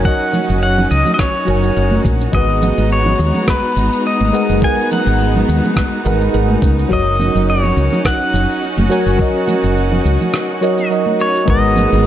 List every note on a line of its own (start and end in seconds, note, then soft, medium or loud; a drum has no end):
0.00 0.02 F#3 medium
0.00 1.43 F#3 medium
0.00 2.30 C#4 medium
0.00 2.30 D#4 medium
0.00 0.04 F#4 medium
0.00 6.87 F#4 medium
0.00 1.44 F#4 medium
0.00 0.05 A#4 medium
0.00 0.06 C#5 medium
0.00 1.50 G#5 medium
0.05 1.45 A#4 medium
0.05 1.45 C#5 medium
0.05 1.46 D#5 loud
0.05 0.62 F#5 loud
0.05 kick loud
0.05 shaker soft
0.33 high bongo soft
0.33 high conga medium
0.33 low conga medium
0.33 shaker medium
0.49 0.85 F#1 medium
0.49 shaker soft
0.62 0.92 F#5 medium
0.62 shaker soft
0.78 high bongo medium
0.78 low conga medium
0.91 1.02 C#2 medium
0.91 1.13 D#5 medium
0.91 shaker medium
1.05 high conga medium
1.05 low conga medium
1.05 shaker soft
1.14 1.20 D#5 medium
1.19 2.01 C#5 medium
1.19 kick loud
1.19 cross-stick medium
1.19 shaker soft
1.45 1.69 F#1 medium
1.45 2.29 F#3 medium
1.45 2.30 F#4 medium
1.45 2.30 A#4 medium
1.45 2.31 C#5 medium
1.45 shaker medium
1.50 2.32 G#5 medium
1.63 high bongo soft
1.63 shaker soft
1.76 1.98 F#1 medium
1.76 shaker soft
1.91 high conga loud
2.05 2.26 A#1 medium
2.05 kick loud
2.05 shaker medium
2.21 shaker soft
2.32 2.71 G#1 medium
2.32 4.30 G#3 medium
2.32 6.87 G#3 medium
2.32 6.87 B3 medium
2.32 11.44 D#4 medium
2.32 4.31 F#4 medium
2.32 4.30 G#4 medium
2.32 4.31 B4 medium
2.32 2.92 D#5 medium
2.32 6.87 A#5 medium
2.32 kick loud
2.32 shaker soft
2.37 4.32 F#5 medium
2.62 high bongo soft
2.62 high conga medium
2.62 low conga medium
2.62 shaker medium
2.78 3.14 G#1 medium
2.78 shaker soft
2.91 3.45 C#5 medium
2.91 shaker soft
3.06 high bongo medium
3.06 low conga medium
3.19 3.31 D#2 medium
3.19 shaker medium
3.34 high conga medium
3.34 low conga medium
3.34 shaker soft
3.48 4.08 B4 medium
3.48 kick loud
3.48 cross-stick medium
3.48 shaker soft
3.76 3.88 G#1 medium
3.76 shaker medium
3.93 shaker soft
4.05 4.59 D#5 medium
4.05 high bongo soft
4.05 shaker soft
4.21 4.30 G#1 medium
4.21 high conga medium
4.32 4.59 G#3 medium
4.32 4.59 G#4 medium
4.32 4.59 A#4 medium
4.32 4.59 B4 medium
4.32 4.60 F#5 medium
4.32 shaker medium
4.49 4.59 F#1 medium
4.49 shaker soft
4.60 6.01 G#3 medium
4.60 6.01 G#4 medium
4.60 6.02 A#4 medium
4.60 6.03 B4 medium
4.60 kick loud
4.60 shaker soft
4.64 6.03 F#5 medium
4.64 4.92 G#5 loud
4.92 6.02 F#5 medium
4.92 high bongo soft
4.92 high conga medium
4.92 low conga medium
4.92 shaker medium
5.06 5.42 G#1 medium
5.06 shaker soft
5.20 shaker soft
5.35 high bongo medium
5.35 low conga medium
5.48 5.59 D#2 medium
5.48 shaker medium
5.64 high conga medium
5.64 low conga medium
5.64 shaker soft
5.76 kick loud
5.76 cross-stick medium
5.76 shaker soft
6.05 6.27 G#1 medium
6.05 6.30 G#3 medium
6.05 6.31 G#4 medium
6.05 6.31 A#4 medium
6.05 6.31 B4 medium
6.05 6.32 F#5 medium
6.05 shaker medium
6.21 high bongo soft
6.21 shaker soft
6.33 6.55 G#1 loud
6.33 6.87 G#3 medium
6.33 6.87 G#4 medium
6.33 6.88 A#4 medium
6.33 6.88 B4 medium
6.33 6.88 F#5 medium
6.33 shaker soft
6.48 high conga medium
6.62 6.84 C#2 medium
6.62 kick medium
6.62 shaker medium
6.79 shaker soft
6.89 7.28 F#1 medium
6.89 8.87 F#3 medium
6.89 11.44 C#4 medium
6.89 8.87 F#4 medium
6.89 11.44 F#4 medium
6.89 8.88 A#4 medium
6.89 8.88 C#5 medium
6.89 kick loud
6.89 shaker soft
6.93 7.45 D#5 loud
6.93 8.89 D#5 loud
7.20 high bongo soft
7.20 high conga medium
7.20 low conga medium
7.20 shaker medium
7.35 7.71 F#1 medium
7.35 shaker soft
7.49 8.02 C#5 loud
7.49 shaker soft
7.63 high bongo medium
7.63 low conga medium
7.76 7.88 C#2 medium
7.76 shaker medium
7.92 high conga medium
7.92 low conga medium
7.92 shaker soft
8.05 10.88 F#5 loud
8.05 kick loud
8.05 cross-stick medium
8.05 shaker soft
8.33 8.45 F#1 medium
8.33 shaker medium
8.50 shaker soft
8.62 high bongo soft
8.62 shaker soft
8.77 8.87 F#1 medium
8.77 high conga medium
8.89 9.15 F#3 medium
8.89 9.16 F#4 medium
8.89 9.16 A#4 medium
8.89 9.16 C#5 medium
8.89 9.17 G#5 loud
8.89 shaker medium
9.06 9.16 F#1 medium
9.06 shaker soft
9.16 10.58 F#3 medium
9.16 10.58 F#4 medium
9.16 10.59 A#4 medium
9.16 10.60 C#5 medium
9.16 kick loud
9.16 shaker soft
9.21 10.60 D#5 medium
9.48 high bongo soft
9.48 high conga medium
9.48 low conga medium
9.48 shaker medium
9.64 9.99 F#1 medium
9.64 shaker soft
9.77 shaker soft
9.91 high bongo medium
9.91 low conga medium
10.05 10.16 C#2 medium
10.05 shaker medium
10.21 high conga medium
10.21 low conga medium
10.21 shaker soft
10.34 cross-stick medium
10.34 shaker soft
10.61 10.87 F#3 medium
10.61 10.87 F#4 medium
10.61 10.88 A#4 medium
10.61 10.88 C#5 medium
10.61 10.88 D#5 medium
10.61 shaker medium
10.78 high bongo soft
10.78 shaker soft
10.90 11.44 F#3 medium
10.90 11.45 F#4 medium
10.90 11.45 A#4 medium
10.90 11.45 C#5 medium
10.90 11.46 D#5 medium
10.90 shaker soft
11.06 high conga medium
11.20 11.47 C#5 loud
11.20 shaker medium
11.36 shaker soft
11.45 11.85 G#1 loud
11.45 12.07 G#3 medium
11.45 12.07 B3 medium
11.45 12.07 D#4 medium
11.45 12.07 F#4 medium
11.45 12.07 G#4 medium
11.45 12.07 A#4 medium
11.45 12.07 B4 medium
11.45 12.07 A#5 medium
11.45 kick loud
11.45 shaker soft
11.50 12.07 D#5 loud
11.50 12.07 F#5 loud
11.76 high conga loud
11.76 low conga medium
11.76 shaker medium
11.92 12.07 G#1 medium
11.92 high bongo medium
11.92 shaker soft